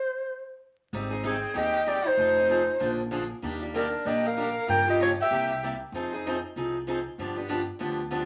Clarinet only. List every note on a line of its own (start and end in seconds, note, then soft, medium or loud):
0.00 0.64 C5 medium
1.26 1.54 G#4 medium
1.57 1.90 D#5 medium
1.88 2.09 D5 loud
2.07 3.00 C5 medium
3.75 4.08 A#4 medium
4.07 4.28 D#5 medium
4.27 4.69 F5 medium
4.70 4.86 G5 loud
4.90 5.00 D#5 medium
5.02 5.10 C#5 medium
5.22 5.61 E5 medium